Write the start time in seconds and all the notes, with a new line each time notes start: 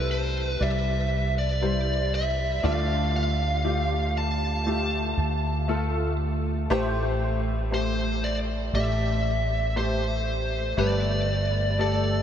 Already playing: C2 C3 G3 E4 A4 B4 C5
0.11 C5
0.49 B4
0.60 C2 G3 E4 D5 E5
1.38 D5
1.61 G3 E4 C5
2.15 E5
2.63 D2 D3 A3 F4 D5 F5
3.16 F5
3.64 A3 F4 G4
4.18 A5
4.66 A3 F4 G4
5.17 D2
5.68 A3 F4 A4
6.70 A1 A2 A3 G4 C5
7.71 A3 G4 C5
8.24 D5
8.73 A1 A3 G4 D5 E5
9.75 A3 G4 C5
10.77 G1 G2 A3 G4 B4 D5
11.78 A3 G4 A4 D5